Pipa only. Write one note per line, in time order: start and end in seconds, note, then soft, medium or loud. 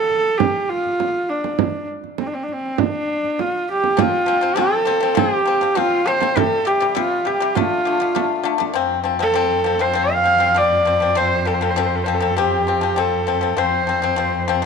3.97 4.21 F3 medium
3.97 4.22 C4 medium
4.26 4.38 F3 medium
4.26 4.39 C4 medium
4.41 4.53 F3 medium
4.41 4.54 C4 medium
4.56 4.80 F3 medium
4.56 4.81 C4 medium
4.85 4.98 F3 medium
4.85 4.99 C4 medium
5.00 5.13 F3 medium
5.00 5.14 C4 medium
5.15 5.39 F3 medium
5.15 5.40 C4 medium
5.45 5.58 F3 medium
5.45 5.59 C4 medium
5.61 5.73 F3 medium
5.61 5.74 C4 medium
5.75 6.00 F3 medium
5.75 6.00 C4 medium
6.06 6.18 F3 medium
6.06 6.19 C4 medium
6.20 6.33 F3 medium
6.20 6.34 C4 medium
6.36 6.60 C3 medium
6.36 6.60 G3 medium
6.65 6.77 C3 medium
6.65 6.78 G3 medium
6.80 6.92 C3 medium
6.80 6.93 G3 medium
6.95 7.19 C3 medium
6.95 7.20 G3 loud
7.25 7.37 C3 medium
7.25 7.38 G3 medium
7.40 7.52 C3 medium
7.40 7.53 G3 medium
7.55 7.79 D3 medium
7.55 7.80 A3 loud
7.85 7.97 D3 medium
7.85 7.98 A3 medium
8.00 8.12 D3 medium
8.00 8.13 A3 medium
8.15 8.39 D3 medium
8.15 8.39 A3 medium
8.43 8.56 D3 medium
8.43 8.57 A3 medium
8.58 8.71 D3 medium
8.58 8.72 A3 medium
8.74 8.98 F3 medium
8.74 8.99 C4 medium
9.04 9.16 F3 medium
9.04 9.17 C4 medium
9.19 9.32 F3 medium
9.19 9.32 C4 medium
9.34 9.58 F3 medium
9.34 9.59 C4 loud
9.64 9.77 F3 medium
9.64 9.78 C4 medium
9.79 9.92 F3 medium
9.79 9.92 C4 medium
9.94 10.18 F3 medium
9.94 10.19 C4 medium
10.24 10.36 F3 medium
10.24 10.37 C4 medium
10.38 10.51 F3 medium
10.38 10.52 C4 medium
10.54 10.79 F3 medium
10.54 10.80 C4 medium
10.85 10.97 F3 medium
10.85 10.98 C4 medium
11.00 11.12 F3 medium
11.00 11.13 C4 medium
11.15 11.39 F3 medium
11.15 11.40 C4 medium
11.45 11.57 F3 medium
11.45 11.58 C4 medium
11.61 11.73 F3 medium
11.61 11.73 C4 medium
11.76 12.00 F3 medium
11.76 12.01 C4 loud
12.06 12.18 F3 medium
12.06 12.19 C4 medium
12.20 12.33 F3 medium
12.20 12.33 C4 medium
12.37 12.60 F3 medium
12.37 12.61 C4 medium
12.67 12.79 F3 medium
12.67 12.79 C4 medium
12.81 12.93 F3 medium
12.81 12.94 C4 medium
12.96 13.20 F3 medium
12.96 13.21 C4 medium
13.27 13.39 F3 medium
13.27 13.39 C4 medium
13.41 13.53 F3 medium
13.41 13.54 C4 medium
13.57 13.81 F3 medium
13.57 13.82 C4 medium
13.87 13.99 F3 medium
13.87 14.00 C4 medium
14.02 14.14 F3 medium
14.02 14.15 C4 medium
14.16 14.41 F3 medium
14.16 14.42 C4 medium
14.48 14.60 F3 medium
14.48 14.60 C4 medium
14.62 14.65 F3 medium